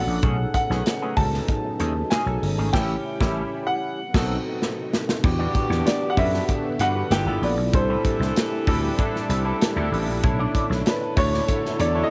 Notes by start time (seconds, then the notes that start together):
Already playing: B3 C#4 D4 F#4 A4 B4 F#5
0.07 A#1 F#3 B3 D4 A4
0.22 B1 C#3 F#3 A3 B3 C#4 D#4 G#4 A4, kick, closed hi-hat
0.39 muted clean electric guitar stroke
0.54 F#5, muted clean electric guitar stroke, kick, closed hi-hat
0.70 B1 A3 C#4 D#4 G#4 B4, snare
0.86 muted clean electric guitar stroke, snare, closed hi-hat
1.02 A3 C#4 D#4 G#4
1.17 C#2 C#4 D#4 F#4 A4 A5, muted clean electric guitar stroke, kick, open hi-hat
1.33 muted clean electric guitar stroke, snare
1.48 muted clean electric guitar stroke, kick, closed hi-hat
1.64 muted clean electric guitar stroke
1.79 D#2 A3 C#4 D#4 G#4, closed hi-hat
1.96 muted clean electric guitar stroke
2.10 A3 C#4 D#4 G#4 G#5, snare, closed hi-hat
2.26 B1 C#4 D#4 G#4 A4, muted clean electric guitar stroke
2.42 G1, muted clean electric guitar stroke, open hi-hat
2.58 G#1 A3 C#4 D#4 G#4
2.73 A1 E3 G3 C#4 E4 G4 A4 G5, kick, snare, crash
3.20 A1 G3 C#4 E4 G4 A4, kick, snare
3.67 F#5
3.98 C3 F#3 B3 D#4
4.14 B1 F#3 C4 D#4 F#4 A4, kick, snare, crash
4.62 snare
4.93 snare
5.09 snare
5.23 E2 D3 E3 B3 D4 E4 F#4 G4, muted clean electric guitar stroke, kick, crash
5.39 G3 D4 F#4 D5
5.55 G3 D4 F#4 D5, kick, closed hi-hat
5.70 E2 B3 D4 F#4 G4, muted clean electric guitar stroke, snare
5.86 D5, muted clean electric guitar stroke, snare, closed hi-hat
6.02 muted clean electric guitar stroke
6.10 F#5
6.17 F#2 G3 B3 D4 F#4 A4 B4 E5, kick, open hi-hat
6.33 G3 D4 F#4 B4, snare
6.48 B3 D4 F#4 A4, kick, closed hi-hat
6.65 muted clean electric guitar stroke
6.79 G2 G3 D4 F#4 B4 F#5, closed hi-hat
6.95 G3 B3 D4 F#4 G4 B4
7.10 G1 E3 A3 B3 D4 E4 F4 G4 A4 G5, muted clean electric guitar stroke, snare, closed hi-hat
7.26 G1 F3 B3 E4 F4 A4
7.42 A#1 F3 B3 E4 B4 D5, open hi-hat
7.57 B1, muted clean electric guitar stroke
7.73 C2 E3 G3 C4 D4 E4 G4 A4 C5, muted clean electric guitar stroke, kick, closed hi-hat
7.89 G3 C4 E4 B4
8.04 G3 C4 E4 A4, kick, closed hi-hat
8.20 C2 D4 E4 G4 C5, muted clean electric guitar stroke, snare
8.36 muted clean electric guitar stroke, snare, closed hi-hat
8.52 muted clean electric guitar stroke
8.67 D2 G3 C4 D4 E4 G4 A4, kick, open hi-hat
8.83 G3 C4 E4 B4
8.98 D4 E4 G4 A4, muted clean electric guitar stroke, kick, closed hi-hat
9.14 muted clean electric guitar stroke, snare
9.29 C2 G3 C4 E4 A4, closed hi-hat
9.45 G3 C4 D4 E4 G4 A4 B4
9.61 muted clean electric guitar stroke, snare, closed hi-hat
9.76 D2 G3 C4 D4 E4 G4 A4
9.91 A1 G3 C4 E4 A4, open hi-hat
10.07 A#1
10.23 B1 D3 B3 C#4 D4 E4 A4 C#5, muted clean electric guitar stroke, kick, closed hi-hat
10.39 D4 E4 A4 D5
10.54 D4 E4 A4 D5, kick, closed hi-hat
10.69 B1 D4 E4 A4 C#5, snare
10.86 B4, muted clean electric guitar stroke, snare, closed hi-hat
11.01 muted clean electric guitar stroke
11.16 D2 D4 E4 A4 C#5, kick, open hi-hat
11.32 D4 E4 A4 C#5, snare
11.48 F#3 D4 E4 A4 C#5, kick, closed hi-hat
11.63 muted clean electric guitar stroke, snare
11.79 E2 D4 E4 A4 C#5 D5, closed hi-hat
11.94 D4 E4 A4 C#5
12.04 D#5